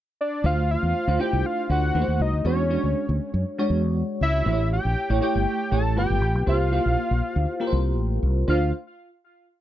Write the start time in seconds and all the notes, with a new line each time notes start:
0.21 D5
0.44 D2 A3 D4 F4 C5 F5
0.71 F5
0.83 E2
1.07 D2 A3 D4 F4 C5
1.19 A3 D4 E4 C5 G5
1.26 F4
1.33 C2
1.46 F5
1.69 D2 A3 D4 F4 C5 F#5
1.94 D#2 A3 D#4 F#4 B4
2.01 C5
2.08 D#2
2.20 C2 D#5
2.33 D2
2.45 E2 G#3 D4 F#4 C#5
2.69 G#3 D4 F#4 C#5
2.84 D2
3.09 D2
3.34 F#2
3.58 G#3 D4 F#4 C#5
3.70 E2
4.21 C#2 E5
4.45 A1 A3 E4 G4 C5
4.53 C#5
4.73 G5
4.85 A#1
5.09 A1 A3 E4 G4 C#5
5.21 A3 E4 G4 C#5 G5
5.35 G1
5.71 A1 A3 E4 G4 C#5 A5
5.96 G1 A3 F4 G4 B4 G5
6.10 G1
6.21 A1
6.35 B1
6.46 C2 A#3 F4 G4 C5 F5
6.72 A#3 E4 G4 C5
6.78 F4
6.86 A#1
7.11 A#1
7.36 D2
7.60 A#3 F4 G4 A#4
7.67 C5
7.72 C2
7.98 A1
8.23 C2
8.48 D2 A3 D4 F4 C5 F5